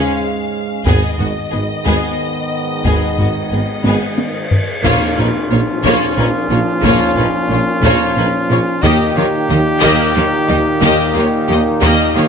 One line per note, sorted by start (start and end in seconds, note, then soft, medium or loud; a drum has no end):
0.00 0.82 G#2 medium
0.00 0.82 G#3 medium
0.00 0.83 G#3 medium
0.00 0.18 C#4 medium
0.00 0.83 C#4 medium
0.00 0.18 G#4 medium
0.00 0.84 F5 medium
0.86 0.99 G#1 medium
0.86 0.94 G#1 medium
0.86 0.94 G#2 medium
0.86 4.49 G#2 medium
0.86 4.49 D#3 medium
0.86 4.49 G#3 medium
0.86 1.17 B3 medium
0.86 4.49 B3 medium
0.86 1.18 G#4 medium
0.86 4.65 D#5 medium
0.86 taiko medium
1.18 1.27 G#1 soft
1.18 1.33 G#1 soft
1.18 1.27 G#2 soft
1.18 1.26 B3 soft
1.18 1.26 F#4 soft
1.18 taiko low soft
1.50 1.65 G#1 soft
1.50 1.60 G#1 soft
1.50 1.61 G#2 soft
1.50 1.61 B3 soft
1.50 1.58 G#4 soft
1.85 1.99 G#1 medium
1.85 1.94 G#1 medium
1.85 1.94 G#2 medium
1.85 2.17 B3 medium
1.85 2.17 G#4 medium
1.85 taiko medium
2.85 2.98 G#1 medium
2.85 2.93 G#1 medium
2.85 2.94 G#2 medium
2.85 3.17 B3 medium
2.85 3.16 G#4 medium
2.85 taiko medium
3.18 3.26 G#1 soft
3.18 3.32 G#1 soft
3.18 3.27 G#2 soft
3.18 3.27 B3 soft
3.18 3.27 F#4 soft
3.18 taiko low soft
3.51 3.59 G#1 soft
3.51 3.65 G#1 soft
3.51 3.59 G#2 soft
3.51 3.61 B3 soft
3.51 3.59 G#4 soft
3.84 3.98 G#1 medium
3.84 3.92 G#1 medium
3.84 3.93 G#2 medium
3.84 4.16 B3 medium
3.84 4.17 G#4 soft
3.84 taiko high medium
4.18 taiko high medium
4.51 taiko low medium
4.83 4.97 A#1 medium
4.83 4.92 A#1 medium
4.83 4.91 A#2 medium
4.83 8.79 A#2 medium
4.83 8.79 F3 medium
4.83 5.15 A#3 medium
4.83 8.79 C#4 medium
4.83 8.84 F4 medium
4.83 5.16 F4 medium
4.83 5.16 C#5 medium
4.83 taiko medium
4.83 tam-tam medium
5.17 5.30 A#1 medium
5.17 5.27 A#1 medium
5.17 5.26 A#2 medium
5.17 5.25 C#4 medium
5.17 5.26 D#4 soft
5.17 5.27 B4 medium
5.50 5.59 A#1 medium
5.50 5.64 A#1 soft
5.50 5.59 A#2 medium
5.50 5.58 A#3 medium
5.50 5.61 F4 soft
5.50 5.59 C#5 medium
5.83 5.97 A#1 medium
5.83 5.92 A#1 medium
5.83 5.92 A#2 medium
5.83 6.15 A#3 medium
5.83 6.15 F4 medium
5.83 6.15 C#5 medium
5.83 taiko medium
6.17 6.26 A#1 medium
6.17 6.32 A#1 medium
6.17 6.25 A#2 medium
6.17 6.25 C#4 medium
6.17 6.27 D#4 medium
6.17 6.26 B4 medium
6.50 6.58 A#1 medium
6.50 6.64 A#1 medium
6.50 6.58 A#2 medium
6.50 6.58 A#3 medium
6.50 6.59 F4 soft
6.50 6.59 C#5 medium
6.83 6.91 A#1 medium
6.83 6.97 A#1 medium
6.83 6.92 A#2 medium
6.83 7.14 A#3 medium
6.83 7.16 F4 medium
6.83 7.15 C#5 medium
6.83 taiko loud
7.16 7.24 A#1 medium
7.16 7.31 A#1 medium
7.16 7.26 A#2 medium
7.16 7.25 C#4 medium
7.16 7.27 D#4 medium
7.16 7.25 B4 medium
7.49 7.63 A#1 soft
7.49 7.58 A#1 medium
7.49 7.57 A#2 medium
7.49 7.57 A#3 medium
7.49 7.59 C#5 medium
7.54 7.62 F4 medium
7.82 7.90 A#1 medium
7.82 7.97 A#1 medium
7.82 7.91 A#2 medium
7.82 8.14 A#3 medium
7.82 8.15 F4 medium
7.82 8.14 C#5 medium
7.82 taiko medium
8.15 8.25 A#1 medium
8.15 8.30 A#1 medium
8.15 8.23 A#2 medium
8.15 8.25 C#4 medium
8.15 8.27 D#4 medium
8.15 8.26 B4 medium
8.49 8.57 A#1 medium
8.49 8.63 A#1 medium
8.49 8.57 A#2 medium
8.49 8.58 A#3 medium
8.49 8.59 F4 medium
8.49 8.59 C#5 medium
8.82 8.96 D#2 medium
8.82 8.91 D#2 medium
8.82 12.28 A#2 medium
8.82 12.28 D#3 medium
8.82 8.91 D#3 medium
8.82 9.14 A#3 medium
8.82 12.28 A#3 medium
8.82 12.28 D#4 medium
8.82 12.28 G4 medium
8.82 9.15 G4 medium
8.82 9.14 D#5 medium
8.82 taiko loud
9.15 9.23 D#2 medium
9.15 9.30 D#2 medium
9.15 9.24 D#3 medium
9.15 9.25 A#3 medium
9.15 9.25 F4 medium
9.15 9.24 C#5 medium
9.49 9.62 D#2 medium
9.49 9.57 D#2 medium
9.49 9.57 D#3 medium
9.49 9.58 A#3 medium
9.49 9.58 G4 medium
9.49 9.57 D#5 medium
9.81 9.90 D#2 medium
9.81 9.96 D#2 medium
9.81 9.90 D#3 medium
9.81 10.13 A#3 loud
9.81 10.13 G4 medium
9.81 10.13 D#5 medium
9.81 taiko medium
10.14 10.24 D#2 medium
10.14 10.29 D#2 medium
10.14 10.23 D#3 medium
10.14 10.23 A#3 medium
10.14 10.22 F4 medium
10.14 10.25 C#5 medium
10.48 10.58 D#2 medium
10.48 10.63 D#2 medium
10.48 10.57 D#3 medium
10.48 10.56 A#3 medium
10.48 10.56 G4 medium
10.48 10.57 D#5 medium
10.81 10.95 D#2 medium
10.81 10.90 D#2 medium
10.81 10.90 D#3 medium
10.81 11.13 A#3 medium
10.81 11.13 G4 medium
10.81 11.14 D#5 medium
10.81 taiko loud
11.14 11.23 D#2 medium
11.14 11.29 D#2 medium
11.14 11.24 D#3 medium
11.14 11.22 A#3 medium
11.14 11.22 F4 medium
11.18 11.26 C#5 medium
11.48 11.62 D#2 medium
11.48 11.58 D#2 medium
11.48 11.57 D#3 medium
11.48 11.57 A#3 medium
11.48 11.56 G4 medium
11.48 11.59 D#5 medium
11.81 11.95 D#2 loud
11.81 11.90 D#2 medium
11.81 11.90 D#3 loud
11.81 12.13 A#3 medium
11.81 12.12 G4 medium
11.81 12.14 D#5 loud
11.81 taiko medium
12.15 12.28 D#2 medium
12.15 12.24 D#2 medium
12.15 12.23 D#3 medium
12.15 12.23 A#3 medium
12.15 12.23 F4 medium
12.15 12.25 C#5 medium